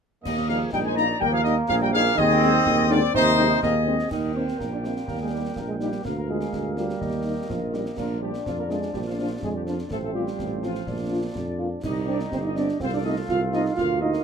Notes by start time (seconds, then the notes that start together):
0.24 D#2 D#3 A#3 G4 D#5, concert bass drum, snare, crash
0.37 snare
0.48 F3 G3 A#3 D#4 G#4 F5, snare
0.71 A#1 G3 D#4 A#4 G5, concert bass drum, snare
0.84 G#3 C5 G#5
0.95 G3 A#3 D#4 D5 A#5, snare
1.20 D#2 G3 A#3 A#4 G5, concert bass drum
1.31 F3 G#4 F5
1.44 D#3 G3 A#3 D#4 G4 D#5, snare
1.68 A#1 F3 G#4 F5, concert bass drum, snare
1.81 G3 A#4 G5
1.92 F3 G3 A#3 D#4 G#4 F5
2.06 snare
2.15 D#2 D#3 C4 G#4 D#5, concert bass drum, snare, crash
2.30 snare
2.42 G#3 C4 D#4, snare
2.66 D#2, concert bass drum, snare
2.89 D3 G#3 C4 D#4 F4 D5, snare
3.13 D#2 C3 D#4 C5, concert bass drum
3.38 G#3 C4 D#4, snare
3.62 D#2 A#3 C4 G#4 A#4 D#5, concert bass drum, snare
3.86 G#3 C4 D#4 C5
3.99 snare
4.10 D#2 G3 A#3 D#4 A#4 D#5 G5, concert bass drum, snare, crash
4.35 G3 A#3 C4 D#4 C5
4.48 snare
4.58 A#1 A#3 A#4, concert bass drum, snare
4.72 D4 D5
4.83 G3 A#3 C4 D#4 C5, snare
4.96 snare
5.07 D#2 A#3 A#4, concert bass drum, snare
5.20 G#3 G#4
5.30 G3 A#3 D#4 G4
5.55 A#1 A#3 A#4, concert bass drum, snare
5.68 G#3 G#4
5.79 G3 A#3 D#4 G4, snare
5.92 snare
6.03 D2 F3 A#3 A#4 F5, concert bass drum, snare
6.17 A#3 A#4
6.28 F3 G#3 A#3 F4 G#4
6.41 snare
6.53 D2, concert bass drum, snare
6.77 F3 G3 A#3 F4 G4, snare
6.90 snare
7.00 D#2 D#3 D#5, concert bass drum, snare
7.25 G3 A#3 D#4
7.49 A#1 F3 F4, concert bass drum, snare
7.72 G3 A#3 D#4 G4, snare
7.86 snare
7.96 A#1 F3 A#3 D4 F4 A#4 D5, concert bass drum, snare, crash
8.21 F3 G3 A#3 D4 G4
8.34 snare
8.45 F2 F3 F4, concert bass drum, snare
8.58 A#3 A#4
8.68 F3 G#3 A#3 D4 G#4, snare
8.82 snare
8.93 A#1 G3 G4, concert bass drum, snare
9.05 F3 F4
9.18 F3 A#3 D4 F4
9.42 F2 G#3 G#4, concert bass drum, snare
9.56 G3 G4
9.66 F3 A#3 D4 F4, snare
9.78 snare
9.90 A1 F3 A3 C4 F4 A4 C5, concert bass drum, snare
10.03 A3 A4
10.14 F3 G3 C4 F4 G4
10.27 snare
10.39 A1, concert bass drum, snare
10.62 F3 C4 F4, snare
10.75 snare
10.87 A#1 D4 D5, concert bass drum, snare
11.11 A#3 D4 F4
11.35 F2, concert bass drum, snare
11.59 A#3 D4 F4
11.83 C2 G3 D#4 G4 D#5, concert bass drum, snare, crash
12.07 G3 C4 D4 D5
12.20 snare
12.31 G1 C4 C5, concert bass drum, snare
12.44 D#4 D#5
12.55 G3 C4 D4 D5, snare
12.68 snare
12.80 C2 A3 C4 F4 A4 C5 F5, concert bass drum, snare
12.94 D4 D5
13.04 A3 C4 D#4 F4 D#5
13.28 C2 F4 F5, concert bass drum, snare
13.53 A3 C4 D#4 F4 D#5, snare
13.65 snare
13.76 D2 A#3 F4 A#4 F5, concert bass drum, snare
14.01 A#3 D#4 F4 D#5
14.13 snare